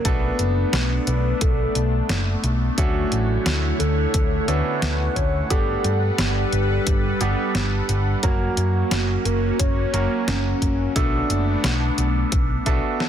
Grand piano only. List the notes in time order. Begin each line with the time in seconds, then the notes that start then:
0.05 A3 B3 D4 F#4 A4
2.78 A3 C#4 D4 F#4 A4
4.48 A3 C#4 D4 F#4 A4
5.50 G3 B3 D4 G4 F#5
7.21 G3 B3 D4 G4 F#5
8.23 F#3 A#3 C#4 F#4 A#4
9.94 F#3 A#3 C#4 F#4 A#4
10.96 A3 B3 D4 F#4 A4
12.66 A3 B3 D4 F#4 A4